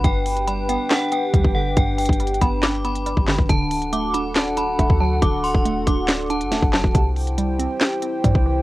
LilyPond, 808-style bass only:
\new Staff \with { instrumentName = "808-style bass" } { \clef bass \time 4/4 \key d \mixolydian \tempo 4 = 139 g,,4.~ g,,16 r4 r16 d,16 g,,8. | g,,8. g,,8. g,,4.~ g,,16 g,,8 g,,16 | d,,2~ d,,16 e,,16. d,,16. d,,16 d,8. | d,,8. d,,8 e,,16 d,,4~ d,,16 fis,,16 d,,16 fis,,8 d,,16 |
c,4.~ c,16 r4 r16 g,16 c,8. | }